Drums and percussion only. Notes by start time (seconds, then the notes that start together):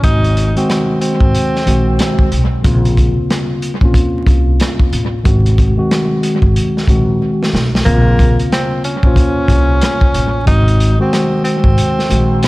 0.04 kick, closed hi-hat
0.24 closed hi-hat
0.37 closed hi-hat
0.57 closed hi-hat
0.70 cross-stick, snare, closed hi-hat
1.01 closed hi-hat
1.20 kick
1.35 closed hi-hat
1.55 snare
1.67 closed hi-hat
1.99 cross-stick, snare, closed hi-hat
2.19 kick
2.32 closed hi-hat
2.64 kick, closed hi-hat
2.85 closed hi-hat
2.97 kick, closed hi-hat
3.30 cross-stick, snare, closed hi-hat
3.62 closed hi-hat
3.81 kick
3.94 kick, closed hi-hat
4.27 kick, closed hi-hat
4.60 cross-stick, snare, closed hi-hat
4.79 kick
4.93 closed hi-hat
5.25 kick, closed hi-hat
5.46 closed hi-hat
5.58 kick, closed hi-hat
5.91 cross-stick, snare, closed hi-hat
6.23 closed hi-hat
6.42 kick
6.56 closed hi-hat
6.77 snare
6.87 kick, closed hi-hat
7.43 snare
7.55 snare
7.75 snare
7.86 kick, closed hi-hat
8.19 kick, closed hi-hat
8.39 closed hi-hat
8.52 cross-stick, snare, closed hi-hat
8.84 closed hi-hat
9.03 kick
9.16 kick, closed hi-hat
9.48 kick, closed hi-hat
9.82 cross-stick, snare, closed hi-hat
10.01 kick
10.14 closed hi-hat
10.47 kick, closed hi-hat
10.68 closed hi-hat
10.80 closed hi-hat
11.13 cross-stick, snare, closed hi-hat
11.45 closed hi-hat
11.64 kick
11.78 closed hi-hat
11.99 snare
12.10 closed hi-hat
12.43 snare, closed hi-hat